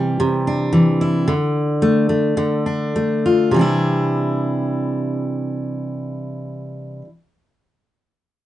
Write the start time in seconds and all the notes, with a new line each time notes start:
Already playing: C3 E3 G3
0.20 C3
0.47 D4
0.73 E3
1.01 E4
1.28 D3
1.82 A3
2.09 A3
2.37 D3
2.66 D4
2.96 A3
3.26 F4
3.51 C3 E3
3.56 G3 D4
3.61 E4